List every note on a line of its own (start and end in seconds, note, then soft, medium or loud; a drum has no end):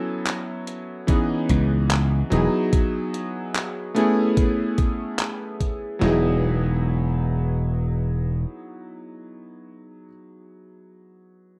0.00 1.00 F#3 medium
0.00 1.01 B3 medium
0.00 1.01 C#4 medium
0.00 1.01 E4 medium
0.00 1.02 A4 medium
0.26 clap loud
0.26 closed hi-hat medium
0.67 closed hi-hat medium
1.07 2.24 E3 medium
1.07 2.24 B3 medium
1.07 2.24 C#4 medium
1.07 2.25 D#4 medium
1.07 2.25 G#4 medium
1.07 kick loud
1.07 closed hi-hat medium
1.49 2.22 C#2 medium
1.49 kick medium
1.49 closed hi-hat medium
1.91 clap loud
1.91 closed hi-hat medium
2.30 2.47 E1 medium
2.30 3.88 F#3 medium
2.30 3.88 B3 medium
2.30 3.89 D#4 medium
2.30 3.89 E4 medium
2.30 3.89 G#4 medium
2.30 closed hi-hat medium
2.73 kick loud
2.73 closed hi-hat medium
3.14 closed hi-hat medium
3.55 clap loud
3.55 closed hi-hat medium
3.95 5.93 A3 medium
3.95 5.94 B3 medium
3.95 5.94 C#4 medium
3.95 5.95 E4 medium
3.95 5.95 G#4 loud
3.95 closed hi-hat medium
4.37 kick loud
4.37 closed hi-hat medium
4.78 kick loud
4.78 closed hi-hat medium
5.19 clap loud
5.19 closed hi-hat medium
5.60 kick medium
5.60 closed hi-hat medium
5.99 8.44 E1 loud
5.99 10.05 F#3 medium
5.99 10.06 B3 medium
5.99 10.06 D#4 medium
5.99 10.07 E4 medium
5.99 snare loud
6.04 10.07 G#4 medium